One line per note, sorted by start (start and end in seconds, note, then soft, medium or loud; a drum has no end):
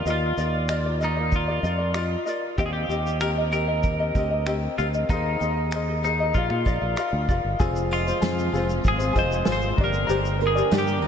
0.06 0.32 D#2 loud
0.06 0.38 F4 medium
0.06 0.39 A#4 medium
0.06 0.36 D#5 medium
0.06 0.37 F5 medium
0.06 tambourine soft
0.06 shaker medium
0.10 0.99 F4 medium
0.10 0.39 D5 medium
0.37 1.60 D#2 medium
0.37 0.69 F4 medium
0.37 0.70 A#4 medium
0.37 0.97 D5 medium
0.37 0.71 D5 medium
0.37 0.68 D#5 medium
0.37 tambourine soft
0.37 shaker soft
0.69 0.86 F4 medium
0.69 0.86 A#4 medium
0.69 0.85 D5 medium
0.69 0.85 D#5 medium
0.69 finger snap loud
0.69 tambourine medium
0.69 shaker medium
0.86 1.01 F4 soft
0.86 1.01 A#4 soft
0.86 1.00 D5 soft
1.00 1.35 D#4 medium
1.00 1.17 F4 medium
1.00 1.17 A#4 medium
1.00 1.15 D5 medium
1.00 1.16 D#5 medium
1.00 tambourine soft
1.00 shaker soft
1.17 1.50 F4 soft
1.17 1.48 A#4 medium
1.17 1.47 D5 medium
1.32 2.24 F4 medium
1.32 kick medium
1.32 tambourine soft
1.32 shaker medium
1.48 1.63 F4 soft
1.48 1.64 A#4 soft
1.48 1.62 D5 medium
1.63 2.15 F2 medium
1.63 1.80 F4 medium
1.63 1.79 A#4 medium
1.63 1.94 D5 medium
1.63 1.77 D5 medium
1.63 1.78 D#5 medium
1.63 tambourine soft
1.63 shaker soft
1.78 1.94 F4 soft
1.78 1.95 A#4 soft
1.78 1.94 D5 soft
1.94 2.26 F4 medium
1.94 2.27 A#4 medium
1.94 2.28 D5 medium
1.94 2.24 D#5 medium
1.94 finger snap medium
1.94 tambourine medium
1.94 shaker medium
2.25 2.58 F4 medium
2.25 2.58 A#4 medium
2.25 2.58 D5 medium
2.25 2.58 D#5 medium
2.25 tambourine soft
2.25 shaker soft
2.58 2.84 D#2 loud
2.58 2.89 C4 medium
2.58 2.88 G4 medium
2.58 2.65 G4 medium
2.58 2.90 A#4 medium
2.58 2.91 D#5 medium
2.58 2.89 F5 medium
2.58 kick loud
2.58 tambourine soft
2.58 shaker medium
2.66 2.72 G#4 medium
2.73 3.21 G4 medium
2.89 4.11 D#2 medium
2.89 3.21 C4 medium
2.89 3.20 G4 medium
2.89 3.21 A#4 medium
2.89 3.49 D#5 medium
2.89 3.22 D#5 medium
2.89 tambourine soft
2.89 shaker soft
3.07 shaker soft
3.21 3.37 C4 medium
3.21 3.37 G4 medium
3.21 3.30 A#4 medium
3.21 3.37 A#4 medium
3.21 3.37 D#5 medium
3.21 finger snap loud
3.21 tambourine medium
3.21 shaker medium
3.38 3.52 C4 soft
3.38 3.53 A#4 soft
3.38 3.53 D#5 soft
3.52 3.68 C4 medium
3.52 3.68 G4 medium
3.52 4.78 A#4 medium
3.52 3.68 A#4 medium
3.52 3.66 D#5 medium
3.52 tambourine soft
3.52 shaker soft
3.68 4.01 C4 soft
3.68 4.00 A#4 soft
3.68 3.99 D#5 medium
3.83 kick medium
3.83 tambourine soft
3.83 shaker medium
4.00 4.15 C4 soft
4.00 4.16 A#4 soft
4.00 4.15 D#5 medium
4.15 4.67 D2 medium
4.15 4.32 C4 medium
4.15 4.31 G4 medium
4.15 4.31 A#4 medium
4.15 4.45 D#5 medium
4.15 kick medium
4.15 tambourine soft
4.15 shaker soft
4.19 4.29 D#5 medium
4.30 4.45 C4 soft
4.30 4.47 A#4 medium
4.30 4.46 D#5 medium
4.46 4.78 C4 medium
4.46 4.77 G4 medium
4.46 4.79 A#4 medium
4.46 4.79 D#5 medium
4.46 finger snap medium
4.46 tambourine medium
4.46 shaker medium
4.78 5.04 D2 medium
4.78 4.94 C4 medium
4.78 4.87 F4 medium
4.78 4.94 G4 soft
4.78 4.95 A#4 medium
4.78 4.93 D#5 medium
4.78 tambourine soft
4.78 shaker soft
4.94 5.11 A#4 soft
4.94 5.10 D#5 medium
4.94 shaker soft
4.99 5.12 C4 soft
5.09 5.35 D#2 medium
5.09 6.03 D#4 medium
5.09 5.42 G#4 medium
5.09 5.42 A#4 medium
5.09 5.40 C5 medium
5.09 5.43 D#5 medium
5.09 5.39 F5 medium
5.09 kick loud
5.09 tambourine soft
5.09 shaker medium
5.40 6.31 D#2 medium
5.40 5.73 G#4 medium
5.40 5.72 C5 medium
5.40 6.00 D#5 medium
5.40 tambourine soft
5.40 shaker medium
5.44 5.74 A#4 medium
5.44 5.74 D#5 medium
5.71 5.88 C5 medium
5.71 finger snap loud
5.71 tambourine medium
5.71 shaker medium
5.75 5.89 G#4 medium
5.75 5.89 A#4 medium
5.75 5.88 D#5 medium
5.89 6.05 G#4 soft
5.89 6.04 A#4 soft
5.89 6.04 D#5 soft
6.03 6.33 D#4 medium
6.03 6.20 G#4 medium
6.03 6.07 C5 medium
6.03 tambourine soft
6.03 shaker soft
6.07 6.20 A#4 medium
6.07 6.19 D#5 medium
6.20 6.36 G#4 soft
6.20 6.36 A#4 soft
6.20 6.35 D#5 medium
6.34 6.48 A#1 medium
6.34 7.25 F4 medium
6.34 6.51 F4 medium
6.34 6.51 A#4 medium
6.34 6.51 D5 medium
6.34 6.49 F5 medium
6.34 kick medium
6.34 shaker medium
6.50 6.63 A#2 medium
6.50 6.65 F4 soft
6.50 6.67 A#4 soft
6.50 6.66 F5 soft
6.50 finger snap soft
6.65 6.79 A#1 medium
6.65 6.82 F4 medium
6.65 6.82 A#4 medium
6.65 6.96 D5 medium
6.65 6.82 D5 medium
6.65 6.80 F5 medium
6.65 kick medium
6.65 tambourine soft
6.65 shaker soft
6.81 6.95 A#1 medium
6.81 6.96 F4 soft
6.81 6.98 A#4 soft
6.81 6.97 F5 medium
6.96 7.29 F4 medium
6.96 7.30 A#4 medium
6.96 7.27 D5 medium
6.96 7.30 F5 medium
6.96 finger snap medium
6.96 tambourine medium
6.96 shaker medium
7.13 7.26 D2 medium
7.28 7.42 F1 medium
7.28 7.59 F4 medium
7.28 7.60 A#4 medium
7.28 7.59 D5 medium
7.28 7.61 F5 medium
7.28 kick medium
7.28 tambourine soft
7.28 shaker soft
7.45 7.57 G1 medium
7.60 8.11 F1 medium
7.60 9.77 C3 medium
7.60 9.77 F3 medium
7.60 9.77 G#3 medium
7.60 8.07 C4 loud
7.60 8.07 F4 loud
7.60 9.77 F4 medium
7.60 8.07 G#4 loud
7.60 8.06 C5 loud
7.60 7.92 F5 medium
7.60 kick loud
7.60 tambourine soft
7.60 shaker medium
7.76 shaker medium
7.91 8.82 F4 medium
7.91 8.50 D#5 medium
7.91 tambourine soft
8.07 8.21 C4 soft
8.07 8.22 F4 soft
8.07 8.23 C5 medium
8.07 shaker soft
8.21 8.48 F2 medium
8.21 8.53 C4 medium
8.21 8.54 F4 medium
8.21 8.52 G#4 medium
8.21 8.54 C5 medium
8.21 snare loud
8.21 tambourine loud
8.21 shaker medium
8.39 shaker soft
8.53 8.79 F1 loud
8.53 9.01 C4 medium
8.53 9.00 F4 medium
8.53 9.00 G#4 medium
8.53 8.97 C5 medium
8.53 tambourine soft
8.53 shaker soft
8.69 shaker soft
8.84 9.10 G#1 medium
8.84 9.16 G#4 loud
8.84 kick medium
8.84 tambourine soft
8.84 shaker medium
8.98 9.14 F4 medium
8.98 9.15 C5 medium
8.98 shaker medium
9.03 9.13 C4 medium
9.13 9.41 F1 medium
9.13 9.44 C4 medium
9.13 9.45 F4 medium
9.13 9.44 G#4 medium
9.13 9.47 C5 medium
9.13 9.46 D#5 medium
9.13 kick medium
9.13 tambourine medium
9.13 shaker soft
9.19 9.47 C5 loud
9.32 shaker soft
9.45 9.73 G#1 loud
9.45 9.77 C4 medium
9.45 9.78 F4 medium
9.45 9.77 G#4 medium
9.45 9.79 C5 medium
9.45 snare loud
9.45 tambourine medium
9.45 shaker medium
9.52 9.82 C5 loud
9.62 shaker soft
9.77 10.04 G1 loud
9.77 11.08 D3 medium
9.77 11.08 A#3 medium
9.77 10.07 D4 medium
9.77 10.08 G4 medium
9.77 10.06 A#4 medium
9.77 10.09 D5 medium
9.77 11.08 G5 medium
9.77 kick loud
9.77 tambourine soft
9.84 10.40 A#4 medium
9.93 shaker soft
10.07 10.61 G1 loud
10.07 10.56 D4 medium
10.07 10.55 G4 loud
10.07 10.55 A#4 loud
10.07 10.40 C5 loud
10.07 10.54 D5 loud
10.07 tambourine soft
10.07 shaker medium
10.25 shaker soft
10.41 11.00 A#4 medium
10.41 tambourine soft
10.47 10.76 G#4 medium
10.55 10.71 D4 soft
10.55 10.71 G4 soft
10.55 10.71 D5 medium
10.55 shaker soft
10.71 11.03 G2 medium
10.71 11.02 D4 medium
10.71 11.02 G4 medium
10.71 11.01 A#4 medium
10.71 11.04 D5 medium
10.71 snare loud
10.71 tambourine medium
10.71 shaker medium
10.78 11.08 G4 medium
10.87 shaker medium
11.02 11.08 D2 medium
11.02 11.08 D4 medium
11.02 11.08 A#4 medium
11.02 tambourine soft